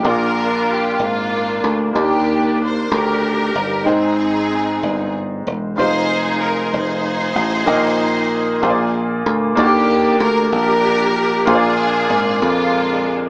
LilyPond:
<<
  \new Staff \with { instrumentName = "String section" } { \time 6/8 \key ees \major \tempo 4. = 63 << { bes'4 g'8 f'4 r8 | g'4 c''8 bes'4. | aes'2 r4 | c''4 bes'8 c''4.~ |
c''2 r4 | g'4 bes'8 bes'4. | aes'4. f'4 r8 | } \\ { <d' f'>4. <bes d'>4. | <bes d'>4. <d' g'>4. | <c' ees'>2 r4 | <ees' aes'>4. <ees' aes'>4.~ |
<ees' aes'>2 r4 | <bes d'>4. <d' g'>4. | <d' f'>4. <aes d'>4. | } >> }
  \new Staff \with { instrumentName = "Grand piano" } { \time 6/8 \key ees \major <bes d' f' d''>2. | <bes d' g' d''>2. | <aes ees' c'' g''>2. | <g aes ees' f' c''>2. |
<bes ees' ees'' g''>4. <bes f' aes' c'' d''>4. | <bes d' ges' g' d''>2. | <bes f' aes' c'' d''>2. | }
  \new Staff \with { instrumentName = "Grand piano" } { \clef bass \time 6/8 \key ees \major bes,4. r4. | ees4. r4. | aes,4. r4. | r2. |
bes,4. bes,4. | d4. r4. | bes,4. r4. | }
  \new Staff \with { instrumentName = "Slap bass" } { \clef bass \time 6/8 \key ees \major bes,,4. aes,,4 d,8 | ees,4. d,4 g,,8 | aes,,4. g,,4 fes,,8 | f,,4. f,,4 a,,8 |
bes,,4. bes,,4 d,8 | ees,4 d,8 bes,,4. | bes,,4 aes,,8 f,4. | }
>>